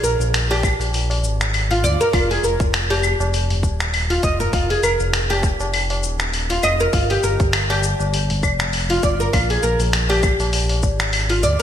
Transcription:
0.03 analog synth bass A#1, oud A#4, shaker
0.20 analog synth bass A#1, tabla tin, shaker
0.34 finger snap, open hi-hat, shaker
0.51 oud G4, open hi-hat, tabla na
0.63 kick, claves, shaker
0.79 analog synth bass A#1, open hi-hat, tabla na, shaker
0.94 open hi-hat, shaker
1.10 open hi-hat, tabla na
1.23 analog synth bass G#1, tabla tin, shaker
1.41 finger snap, shaker
1.54 open hi-hat, claves, shaker
1.71 oud F4, open hi-hat
1.83 analog synth bass D2, oud D5, tabla ge, shaker
2.01 oud A#4, shaker
2.13 analog synth bass F1, oud F4, kick, open hi-hat, claves, shaker
2.31 oud G#4, open hi-hat
2.43 analog synth bass F1, oud A#4, shaker
2.60 analog synth bass F1, kick, tabla tin, shaker
2.74 finger snap, open hi-hat, shaker
2.90 oud G4, open hi-hat, tabla na
3.03 claves, shaker
3.20 analog synth bass F1, tabla na, shaker
3.34 open hi-hat, shaker
3.50 open hi-hat, tabla ge
3.63 analog synth bass D#1, kick, tabla na, tabla tin, shaker
3.80 finger snap, shaker
3.94 open hi-hat, claves, shaker
4.10 oud F4, open hi-hat
4.23 analog synth bass F1, oud D#5, kick, shaker
4.40 oud A#4, tabla ge, shaker
4.53 analog synth bass F1, oud F4, kick, open hi-hat, shaker
4.70 oud G#4, open hi-hat
4.83 analog synth bass F1, oud A#4, claves, shaker
5.00 analog synth bass F1, tabla tin, shaker
5.13 finger snap, open hi-hat, shaker
5.30 oud G4, open hi-hat, tabla na
5.43 kick, shaker
5.60 analog synth bass F1, tabla na, shaker
5.74 open hi-hat, claves, shaker
5.90 open hi-hat, tabla na
6.03 analog synth bass D#1, tabla tin, shaker
6.20 finger snap, shaker
6.34 open hi-hat, shaker
6.50 oud F4, open hi-hat
6.63 analog synth bass F1, oud D#5, claves, shaker
6.80 oud A#4, shaker
6.93 analog synth bass G1, oud F4, kick, open hi-hat, shaker
7.10 oud G4, open hi-hat
7.23 analog synth bass G1, oud A#4, shaker
7.40 analog synth bass G1, kick, tabla tin, shaker
7.53 finger snap, open hi-hat, claves, shaker
7.70 oud G4, open hi-hat, tabla na
7.84 shaker
8.00 analog synth bass G1, tabla na, shaker
8.14 open hi-hat, shaker
8.30 open hi-hat, tabla ge
8.43 analog synth bass F1, kick, tabla na, tabla tin, claves, shaker
8.60 finger snap, shaker
8.73 open hi-hat, shaker
8.90 oud F4, open hi-hat
9.03 analog synth bass G1, oud D5, kick, shaker
9.20 oud A#4, tabla ge, shaker
9.33 analog synth bass A#1, oud F4, kick, open hi-hat, claves, shaker
9.50 oud G#4, open hi-hat
9.63 analog synth bass A#1, oud A#4, shaker
9.79 analog synth bass A#1, open hi-hat, tabla tin, shaker
9.93 finger snap, open hi-hat, shaker
10.09 oud G4, open hi-hat, tabla na
10.23 kick, tabla ge, claves, shaker
10.39 analog synth bass A#1, open hi-hat, tabla na, shaker
10.53 open hi-hat, shaker
10.69 open hi-hat, tabla na
10.83 analog synth bass G#1, kick, tabla tin, shaker
11.00 finger snap, open hi-hat, shaker
11.13 open hi-hat, claves, shaker
11.30 oud F4, open hi-hat
11.43 analog synth bass D2, oud D5, tabla ge, shaker

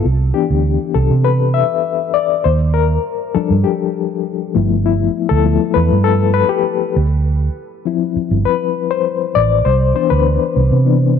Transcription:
0.05 fingered electric bass C2
0.34 reed electric piano E3 B3 D4 G4
0.50 fingered electric bass D2
0.94 fingered electric bass C2, reed electric piano A4
1.11 fingered electric bass C3
1.24 reed electric piano B4
1.54 reed electric piano E5
2.14 reed electric piano D5
2.44 fingered electric bass D#2, reed electric piano C5
2.74 reed electric piano A#4
3.34 reed electric piano F3 G3 D4 A4, muted fingered electric bass stroke
3.51 fingered electric bass G2
3.64 reed electric piano G4
4.55 fingered electric bass G1, reed electric piano F3 A3 B3 E4
4.86 reed electric piano E4
5.29 fingered electric bass D2, reed electric piano A4
5.45 reed electric piano F3 A3 B3 E4
5.74 fingered electric bass E2, reed electric piano B4
5.91 fingered electric bass G2
6.04 reed electric piano A4
6.34 reed electric piano B4
6.49 reed electric piano G4
6.96 fingered electric bass D2
7.85 reed electric piano F3 C4 E4
8.16 muted fingered electric bass stroke
8.31 fingered electric bass G1
8.45 reed electric piano B4
8.91 reed electric piano C5
9.35 fingered electric bass A1, reed electric piano D5
9.65 fingered electric bass C2, reed electric piano C5
9.94 reed electric piano E3 B3 D4 C5
10.10 fingered electric bass D2, reed electric piano B4
10.56 fingered electric bass C2
10.72 fingered electric bass C3
10.85 reed electric piano E3 B3 D4

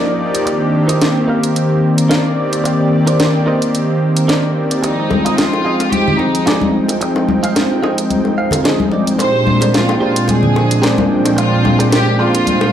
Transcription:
Already playing: clean electric guitar D#4 G4 D5
0.06 analog synth pad F3 A#3 D#4 G4 D5
0.34 muted clean electric guitar stroke, closed hi-hat
0.46 analog synth pad D#3 A#3 C4 D4 G4, muted clean electric guitar stroke, closed hi-hat
0.61 muted clean electric guitar stroke
0.73 muted clean electric guitar stroke
0.88 analog synth pad D#3 A#3 C4 G4, clean electric guitar D#4 A#4 C5 D#5, closed hi-hat
1.01 snare, closed hi-hat
1.28 clean electric guitar D#4 A#4 C5 F5
1.43 analog synth pad D#3 A#3 C4 G4, closed hi-hat
1.55 muted clean electric guitar stroke, closed hi-hat
1.83 analog synth pad D#3 A#3 C4 A#4 D5
1.98 closed hi-hat
2.09 clean electric guitar D#4 A#4 C5 F5, snare, closed hi-hat
2.25 analog synth pad D#3 A#3 C4 G4 D5
2.52 muted clean electric guitar stroke, closed hi-hat
2.64 analog synth pad D#3 A#3 C4 G4 D5, muted clean electric guitar stroke, closed hi-hat
2.79 muted clean electric guitar stroke
2.91 muted clean electric guitar stroke
3.06 analog synth pad D#3 A#3 C4 G4 D5, clean electric guitar D#4 A#4 C5 D5, closed hi-hat
3.20 snare, closed hi-hat
3.46 clean electric guitar D#4 A#4 C5 D#5
3.61 analog synth pad D#3 A#3 C4 G4, closed hi-hat
3.74 muted clean electric guitar stroke, closed hi-hat
4.01 analog synth pad D#3 A#3 C4 A#4
4.17 closed hi-hat
4.28 clean electric guitar D#4 A#4 C5 D5, snare, closed hi-hat
4.43 analog synth pad D#3 A#3 C4 G4 D5
4.71 muted clean electric guitar stroke, closed hi-hat
4.83 analog synth pad F3 G#3 C4 D#4 G5, violin section D#4, muted clean electric guitar stroke, closed hi-hat, high bongo
4.98 muted clean electric guitar stroke
5.10 muted clean electric guitar stroke, high bongo, high conga
5.25 analog synth pad F3 G#3 C4 D#4 G5, clean electric guitar F4 G#4 D#5, closed hi-hat
5.37 violin section F4, snare, closed hi-hat
5.54 high bongo
5.65 clean electric guitar F4 G#4 D#5
5.79 analog synth pad F3 G#3 C4 D#4 G5, closed hi-hat, high bongo
5.91 violin section G4, muted clean electric guitar stroke, closed hi-hat, high conga
6.08 low conga
6.19 analog synth pad F3 G#3 C4 D#4 G#4, violin section D#4, high bongo
6.35 closed hi-hat
6.46 clean electric guitar F4 G#4 D5, snare, closed hi-hat, high bongo
6.61 analog synth pad F3 G#3 C4 D#4 G5, high conga
6.88 muted clean electric guitar stroke, closed hi-hat, high bongo
7.01 analog synth pad F3 G#3 C4 D#4 G5, muted clean electric guitar stroke, closed hi-hat
7.16 muted clean electric guitar stroke, high bongo
7.28 muted clean electric guitar stroke, high conga
7.43 analog synth pad F3 G#3 C4 D#4 G5, clean electric guitar F4 G#4 F5, closed hi-hat
7.56 snare, closed hi-hat, high bongo
7.83 clean electric guitar F4 G#4 D#5, high bongo
7.97 analog synth pad F3 G#3 C4 D#4 G5, closed hi-hat
8.10 muted clean electric guitar stroke, closed hi-hat, high conga
8.25 high bongo
8.37 analog synth pad F3 G#3 C4 D#4 G#4, clean electric guitar F5
8.51 closed hi-hat, high bongo, low conga
8.64 clean electric guitar F4 G#4 D#5, snare, closed hi-hat
8.79 analog synth pad F3 G#3 C4 D#4 G5, high conga
8.91 clean electric guitar D5, high bongo
9.06 muted clean electric guitar stroke, closed hi-hat
9.19 analog synth pad A#2 F3 G#3 C4 D4 G4, violin section C5, muted clean electric guitar stroke, closed hi-hat, high bongo
9.34 muted clean electric guitar stroke
9.46 muted clean electric guitar stroke, high conga
9.61 analog synth pad A#2 F3 G#3 C4 D4 G5, clean electric guitar G4 G#4 A#4 C5 D5, closed hi-hat, high bongo
9.74 violin section F4, snare, closed hi-hat
9.89 high bongo
10.00 violin section F4, clean electric guitar G4 G#4 A#4 C5 D5
10.16 analog synth pad A#2 F3 G#3 C4 D4 G5, closed hi-hat
10.27 violin section G#4, muted clean electric guitar stroke, closed hi-hat, high bongo, high conga
10.43 low conga
10.55 analog synth pad A#2 F3 G#3 C4 D4, high bongo
10.71 closed hi-hat
10.82 clean electric guitar G4 G#4 A#4 C5 D5, snare, closed hi-hat
10.97 analog synth pad A#2 F3 G#3 C4 D4 G5, high bongo, high conga
11.24 muted clean electric guitar stroke, closed hi-hat, high bongo
11.37 analog synth pad A#2 F3 G#3 C4 D4 G5, violin section F4, muted clean electric guitar stroke, closed hi-hat
11.52 muted clean electric guitar stroke
11.64 muted clean electric guitar stroke, high bongo, high conga
11.79 analog synth pad A#2 F3 G#3 C4 D4 G5, clean electric guitar G4 G#4 A#4 C5 D5, closed hi-hat
11.92 violin section G4, snare, closed hi-hat, high bongo
12.19 violin section F4, clean electric guitar G4 G#4 A#4 C5 D5
12.34 analog synth pad A#2 F3 G#3 C4 D4 G5, closed hi-hat, high bongo
12.46 muted clean electric guitar stroke, closed hi-hat, high conga
12.61 high bongo

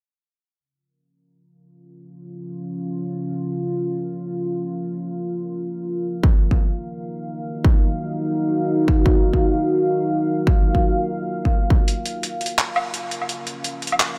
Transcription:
0.59 ambient pad C#4
0.73 ambient pad F4
0.85 ambient pad A#4
0.95 ambient pad F5
6.24 ambient pad D#4, kick
6.42 ambient pad F#4
6.51 kick
7.65 kick
8.88 kick
9.06 kick
9.34 kick
10.47 kick
10.75 kick
11.45 kick
11.70 kick
11.88 ambient pad C#4, closed hi-hat
12.06 closed hi-hat
12.20 ambient pad F4, closed hi-hat
12.41 closed hi-hat
12.46 closed hi-hat
12.58 clap, closed hi-hat
12.76 low woodblock
12.94 closed hi-hat
13.11 closed hi-hat
13.22 low woodblock
13.29 closed hi-hat
13.47 closed hi-hat
13.64 closed hi-hat
13.82 closed hi-hat
13.87 closed hi-hat
13.92 low woodblock
14.00 clap, closed hi-hat, low woodblock

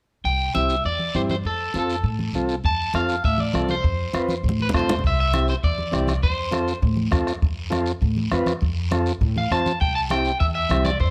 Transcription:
0.24 upright bass C2, clean electric guitar G5, high conga, long guiro
0.54 upright bass C2, transistor combo organ C4 E4 G4, clean electric guitar E5, high conga, short guiro
0.69 short guiro
0.84 upright bass E2, clean electric guitar D5, high conga, long guiro
0.99 high conga
1.14 upright bass G2, transistor combo organ C4 E4 G4, clean electric guitar C5, high conga, short guiro
1.29 clean electric guitar C5, high conga, short guiro
1.44 upright bass F2, clean electric guitar A4, high conga, long guiro
1.74 upright bass F2, transistor combo organ C4 F4 A4, high conga, short guiro
1.79 clean electric guitar A4
1.90 short guiro
2.04 upright bass A2, high conga, long guiro
2.19 high conga
2.33 upright bass C2, transistor combo organ C4 F4 A4, high conga, short guiro
2.49 short guiro
2.64 upright bass F2, clean electric guitar A5, bombo low, high conga, long guiro
2.94 upright bass F2, transistor combo organ C4 F4 A4, clean electric guitar F5, bombo rim, high conga, short guiro
3.09 short guiro
3.24 upright bass A2, clean electric guitar E5, bombo low, high conga, long guiro
3.38 clean electric guitar D5, high conga
3.53 upright bass C2, transistor combo organ C4 F4 A4, bombo rim, high conga, short guiro
3.69 clean electric guitar C5, high conga, short guiro
3.84 upright bass F2, bombo low, high conga, long guiro
4.13 upright bass F2, transistor combo organ C4 F4 B4, bombo rim, high conga, short guiro
4.29 high conga, short guiro
4.43 upright bass A2, bombo low, long guiro
4.49 high conga
4.59 clean electric guitar B4, high conga
4.69 low conga
4.74 upright bass D2, transistor combo organ C4 F4 A4, clean electric guitar C5, bombo low, bombo rim, short guiro
4.79 low conga
4.89 bombo rim, low conga, short guiro
4.99 low conga
5.04 upright bass C2, clean electric guitar E5, bombo low, high conga, long guiro
5.20 clean electric guitar E5
5.33 transistor combo organ C4 E4 G4, bombo rim, high conga, short guiro
5.48 clean electric guitar C5, short guiro
5.63 upright bass E2, clean electric guitar D5, bombo low, high conga, long guiro
5.78 high conga
5.91 upright bass C2, transistor combo organ C4 E4 G4, bombo rim, high conga, short guiro
6.08 bombo rim, high conga, short guiro
6.22 upright bass F2, clean electric guitar C5, bombo low, high conga, long guiro
6.51 transistor combo organ C4 F4 A4, bombo rim, high conga, short guiro
6.68 short guiro
6.82 upright bass A2, bombo low, high conga, long guiro
6.97 high conga
7.11 upright bass F2, transistor combo organ C4 F4 A4, bombo low, bombo rim, high conga, short guiro
7.27 bombo rim, short guiro
7.42 upright bass F2, bombo low, high conga, long guiro
7.70 transistor combo organ C4 F4 A4, bombo rim, high conga, short guiro
7.86 short guiro
8.01 upright bass A2, bombo low, high conga, long guiro
8.17 high conga
8.31 upright bass F2, transistor combo organ C4 F4 B4, bombo rim, high conga, short guiro
8.46 bombo rim, high conga, short guiro
8.61 upright bass F2, bombo low, high conga, long guiro
8.91 transistor combo organ C4 F4 A4, bombo rim, high conga, short guiro
9.06 short guiro
9.21 upright bass A2, bombo low, high conga, long guiro
9.36 clean electric guitar F5, high conga
9.51 upright bass F2, transistor combo organ C4 F4 C5, clean electric guitar A5, bombo rim, high conga, short guiro
9.66 high conga, short guiro
9.80 upright bass C2, clean electric guitar G5, bombo low, high conga, long guiro
9.95 clean electric guitar A5
10.10 transistor combo organ C4 E4 G4, clean electric guitar G5, bombo rim, high conga, short guiro
10.25 short guiro
10.40 upright bass E2, clean electric guitar E5, bombo low, high conga, long guiro
10.55 clean electric guitar E5
10.69 upright bass C2, transistor combo organ C4 E4 G4, bombo rim, high conga, short guiro
10.85 clean electric guitar D5, bombo rim, high conga, short guiro
11.00 upright bass F2, clean electric guitar C5, bombo low, high conga, long guiro

